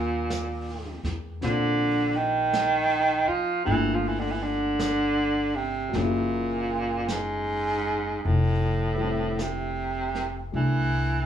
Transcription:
0.00 1.00 D#2 medium
0.00 1.00 A#2 medium
0.00 3.64 G3 soft
0.00 1.40 A#3 soft
0.00 3.67 D4 medium
0.00 3.68 G4 medium
0.30 brush sweep soft
0.30 snare soft
0.30 hi-hat pedal medium
1.03 1.39 E2 medium
1.03 snare soft
1.41 3.24 A#1 medium
1.41 2.18 D3 medium
1.41 3.66 A#3 soft
1.41 3.67 C4 soft
1.41 3.68 F4 soft
1.41 brush sweep soft
1.41 snare soft
2.16 3.29 D#3 loud
2.53 brush sweep soft
2.53 snare soft
2.53 hi-hat pedal soft
3.28 3.65 F3 medium
3.28 muted upright bass stroke soft
3.65 5.90 G1 medium
3.65 3.96 E3 medium
3.65 5.93 G3 soft
3.65 5.94 A3 soft
3.65 5.93 A#3 soft
3.65 brush sweep soft
3.69 5.95 D4 soft
3.69 5.96 F4 medium
3.95 4.09 F3 medium
4.08 4.21 E3 medium
4.19 4.32 D3 medium
4.31 4.44 E3 medium
4.42 5.57 D3 loud
4.79 brush sweep soft
4.79 snare soft
4.79 hi-hat pedal medium
5.56 5.97 C3 medium
5.89 8.22 F#3 soft
5.89 8.24 G#3 soft
5.93 8.20 F#1 medium
5.93 7.10 A#2 medium
5.93 8.25 A#3 soft
5.93 brush sweep soft
5.93 snare soft
5.98 8.26 C#4 soft
5.98 8.28 E4 medium
7.08 8.23 G#2 medium
7.08 brush sweep soft
7.08 snare soft
7.08 hi-hat pedal soft
8.23 10.49 F1 medium
8.23 8.28 G#2 medium
8.23 brush sweep soft
8.27 9.43 A2 medium
8.95 11.26 E3 soft
8.95 10.51 G3 soft
9.00 10.52 A3 soft
9.00 11.26 C4 soft
9.05 11.26 E4 soft
9.39 10.39 C3 medium
9.39 brush sweep soft
9.39 snare soft
9.39 hi-hat pedal medium
10.15 snare soft
10.52 11.26 C2 medium
10.52 11.26 G3 soft
10.52 11.26 A3 soft
10.52 11.26 D4 soft
10.52 brush sweep soft
10.56 11.26 E3 medium

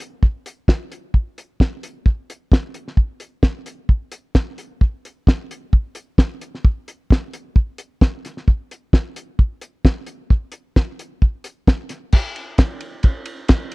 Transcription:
0.00 closed hi-hat medium
0.23 kick medium
0.46 closed hi-hat medium
0.68 kick loud
0.68 snare loud
0.92 closed hi-hat medium
1.14 kick medium
1.38 closed hi-hat medium
1.60 kick loud
1.60 snare loud
1.83 closed hi-hat medium
2.06 kick loud
2.30 closed hi-hat medium
2.52 kick loud
2.52 snare loud
2.74 closed hi-hat medium
2.88 snare soft
2.97 kick medium
3.20 closed hi-hat medium
3.43 kick loud
3.43 snare loud
3.66 closed hi-hat medium
3.89 kick medium
4.12 closed hi-hat medium
4.35 kick loud
4.35 snare loud
4.58 closed hi-hat medium
4.81 kick medium
5.05 closed hi-hat medium
5.27 kick loud
5.27 snare loud
5.51 closed hi-hat medium
5.73 kick loud
5.95 closed hi-hat medium
6.18 kick loud
6.18 snare loud
6.41 closed hi-hat medium
6.55 snare soft
6.65 kick loud
6.88 closed hi-hat medium
7.10 kick loud
7.10 snare loud
7.33 closed hi-hat medium
7.56 kick loud
7.78 closed hi-hat medium
8.01 kick loud
8.01 snare loud
8.25 snare soft
8.25 closed hi-hat medium
8.37 snare soft
8.48 kick loud
8.71 closed hi-hat medium
8.93 kick loud
8.93 snare loud
9.16 closed hi-hat medium
9.39 kick loud
9.61 closed hi-hat medium
9.85 kick loud
9.85 snare loud
10.06 closed hi-hat medium
10.30 kick loud
10.52 closed hi-hat medium
10.76 kick loud
10.76 snare loud
10.99 closed hi-hat medium
11.22 kick loud
11.44 closed hi-hat medium
11.67 kick loud
11.67 snare loud
11.89 snare soft
11.89 closed hi-hat medium
12.12 kick loud
12.12 crash loud
12.36 ride medium
12.58 kick loud
12.58 snare loud
12.58 ride loud
12.81 ride medium
13.03 kick loud
13.03 ride medium
13.25 ride medium
13.48 kick loud
13.48 snare loud
13.48 ride loud
13.72 ride medium

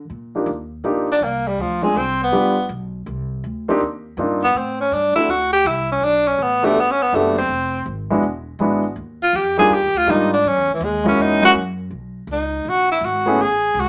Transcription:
0.10 0.45 A#2 medium
0.35 0.46 A#3 soft
0.35 0.47 D4 soft
0.35 0.47 D#4 soft
0.35 0.47 F4 soft
0.35 0.47 G4 soft
0.46 0.83 D#2 medium
0.84 1.20 A#1 medium
0.84 1.06 A#3 medium
0.84 1.06 D4 soft
0.84 1.07 D#4 medium
0.84 1.07 F4 soft
0.84 1.07 G4 medium
1.12 1.25 D4 medium
1.21 1.57 C2 medium
1.21 1.49 A#3 medium
1.48 1.62 G3 medium
1.58 1.94 D2 medium
1.58 1.85 F3 medium
1.82 1.94 G#3 medium
1.82 1.99 G#3 medium
1.82 1.94 C4 soft
1.82 1.94 D4 soft
1.82 1.94 F4 soft
1.82 1.95 G#4 medium
1.95 2.31 C2 medium
1.95 2.21 C4 medium
2.23 2.68 B3 medium
2.32 2.68 G1 medium
2.32 2.54 G3 medium
2.32 2.54 B3 medium
2.32 2.55 D4 medium
2.32 2.55 F4 medium
2.32 2.55 G4 medium
2.69 3.05 B1 medium
3.06 3.42 C2 medium
3.44 3.79 D2 medium
3.68 3.79 A#3 medium
3.68 3.80 C4 medium
3.68 3.80 D4 medium
3.68 3.80 D#4 medium
3.68 3.80 G4 medium
3.81 4.16 D#2 medium
4.17 4.53 G2 medium
4.17 4.39 A#3 medium
4.17 4.40 C4 soft
4.17 4.40 D4 medium
4.17 4.40 D#4 medium
4.17 4.40 F4 medium
4.44 4.59 B3 medium
4.54 4.90 A2 medium
4.54 4.80 C4 medium
4.80 4.95 C#4 medium
4.91 5.14 G2 medium
4.91 5.15 D4 medium
5.16 5.27 A3 medium
5.16 5.27 C4 soft
5.16 5.27 D4 soft
5.16 5.32 E4 medium
5.16 5.28 E4 soft
5.16 5.28 F#4 medium
5.16 muted upright bass stroke soft
5.28 5.64 D2 medium
5.28 5.52 F#4 medium
5.53 5.68 G4 medium
5.65 6.01 C2 medium
5.65 5.90 E4 medium
5.92 6.06 C#4 medium
6.02 6.37 B1 medium
6.02 6.29 D4 medium
6.27 6.44 C#4 medium
6.38 6.74 A1 medium
6.38 6.67 B3 medium
6.63 6.74 A3 medium
6.63 6.82 A3 medium
6.63 6.74 B3 medium
6.63 6.75 D4 medium
6.63 6.75 F#4 medium
6.63 6.75 G4 medium
6.75 7.11 G1 medium
6.80 6.93 B3 medium
6.91 7.03 C#4 medium
7.02 7.17 B3 medium
7.13 7.48 F#1 medium
7.13 7.35 A3 medium
7.13 7.37 A3 medium
7.13 7.35 B3 medium
7.13 7.35 D4 medium
7.13 7.35 F#4 medium
7.13 7.36 G4 medium
7.38 7.83 C4 medium
7.48 7.85 F1 medium
7.86 8.22 G#1 medium
8.10 8.22 G#3 medium
8.10 8.22 B3 medium
8.10 8.22 D4 medium
8.10 8.22 E4 medium
8.10 8.22 F#4 medium
8.23 8.58 E1 medium
8.59 8.95 G#1 medium
8.59 8.82 G#3 medium
8.59 8.82 B3 medium
8.59 8.82 D4 medium
8.59 8.82 E4 medium
8.59 8.83 F#4 medium
8.96 9.32 D#2 medium
9.23 9.37 F4 medium
9.33 9.69 F2 medium
9.33 9.58 G4 medium
9.58 9.69 G3 medium
9.58 9.69 A#3 medium
9.58 9.70 D4 medium
9.58 9.70 D#4 medium
9.58 9.70 F4 medium
9.58 9.75 G#4 loud
9.69 9.82 G2 medium
9.74 9.99 G4 medium
9.82 9.93 D#2 medium
9.94 10.06 D2 medium
9.94 10.11 F4 loud
10.07 10.43 G#2 loud
10.07 10.29 G3 medium
10.07 10.29 A#3 medium
10.07 10.29 D4 medium
10.07 10.30 D#4 medium
10.07 10.33 D#4 medium
10.07 10.30 F4 medium
10.33 10.49 D4 medium
10.44 10.56 F#2 medium
10.44 10.70 C#4 medium
10.56 10.68 E2 medium
10.68 10.80 C#2 medium
10.74 10.85 E3 medium
10.81 11.16 D#2 loud
10.81 11.07 G#3 medium
11.04 11.39 G#3 medium
11.04 11.39 A#3 medium
11.04 11.40 C#4 medium
11.04 11.24 C#4 medium
11.04 11.40 E4 medium
11.04 11.40 F#4 medium
11.17 11.53 E2 medium
11.22 11.44 D#4 medium
11.42 11.53 G#3 medium
11.42 11.53 A#3 medium
11.42 11.54 C#4 medium
11.42 11.54 E4 medium
11.42 11.54 F#4 medium
11.42 11.51 F#4 loud
11.54 11.90 F#2 loud
11.90 12.27 B1 medium
12.27 12.63 C#2 medium
12.32 12.70 D#4 medium
12.65 13.00 A#1 medium
12.69 12.91 F#4 medium
12.91 13.07 E4 medium
13.01 13.37 G#1 medium
13.05 13.43 F#4 medium
13.26 13.37 A3 medium
13.26 13.37 B3 medium
13.26 13.37 C#4 medium
13.26 13.38 E4 medium
13.26 13.38 G#4 medium
13.39 13.74 A1 medium
13.39 13.81 G#4 loud
13.74 13.89 C#2 medium
13.80 13.89 F#4 medium

